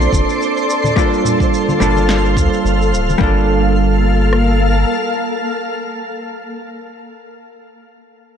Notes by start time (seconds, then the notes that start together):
Already playing: A#3 C4 D4 F4 A4 C5 D5 C6
0.00 muted conga, shaker
0.12 F1, kick, high conga, shaker
0.29 shaker
0.42 shaker
0.57 shaker
0.70 shaker
0.84 high conga, low conga, shaker
0.96 G3 A#3 D4 F4 A4 F5, kick, shaker
1.14 shaker
1.25 muted conga, low conga, shaker
1.40 kick, muted conga, shaker
1.54 shaker
1.69 high conga, shaker
1.80 G1 G3 A#3 D4 F4 A4, low conga, shaker
1.97 muted conga, shaker
2.09 snare, shaker
2.25 shaker
2.37 D2, kick, muted conga, high conga, shaker
2.53 shaker
2.65 G1, shaker
2.82 shaker
2.93 D1, shaker
3.09 high conga, shaker
3.18 G1 G3 A#3 D4 F4 A4 F5, kick
3.23 A4
4.33 cross-stick